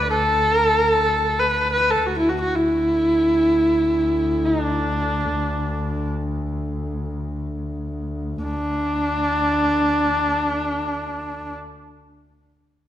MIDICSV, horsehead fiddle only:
0, 0, Header, 1, 2, 480
1, 0, Start_track
1, 0, Tempo, 500000
1, 12365, End_track
2, 0, Start_track
2, 0, Title_t, "Horsehead fiddle"
2, 0, Program_c, 0, 110
2, 99, Note_on_c, 0, 69, 89
2, 522, Note_off_c, 0, 69, 0
2, 522, Note_on_c, 0, 70, 89
2, 637, Note_off_c, 0, 70, 0
2, 637, Note_on_c, 0, 69, 89
2, 762, Note_off_c, 0, 69, 0
2, 762, Note_on_c, 0, 70, 89
2, 877, Note_off_c, 0, 70, 0
2, 877, Note_on_c, 0, 69, 89
2, 1336, Note_on_c, 0, 71, 74
2, 1350, Note_off_c, 0, 69, 0
2, 1652, Note_off_c, 0, 71, 0
2, 1658, Note_on_c, 0, 71, 77
2, 1825, Note_on_c, 0, 69, 77
2, 1840, Note_off_c, 0, 71, 0
2, 1929, Note_off_c, 0, 69, 0
2, 1929, Note_on_c, 0, 69, 55
2, 1975, Note_on_c, 0, 66, 73
2, 1989, Note_off_c, 0, 69, 0
2, 2075, Note_off_c, 0, 66, 0
2, 2095, Note_on_c, 0, 64, 70
2, 2195, Note_on_c, 0, 66, 68
2, 2210, Note_off_c, 0, 64, 0
2, 2294, Note_off_c, 0, 66, 0
2, 2315, Note_on_c, 0, 66, 71
2, 2446, Note_on_c, 0, 64, 74
2, 2461, Note_off_c, 0, 66, 0
2, 4272, Note_on_c, 0, 63, 64
2, 4286, Note_off_c, 0, 64, 0
2, 4435, Note_off_c, 0, 63, 0
2, 4435, Note_on_c, 0, 62, 64
2, 5853, Note_off_c, 0, 62, 0
2, 8096, Note_on_c, 0, 62, 76
2, 11068, Note_off_c, 0, 62, 0
2, 12365, End_track
0, 0, End_of_file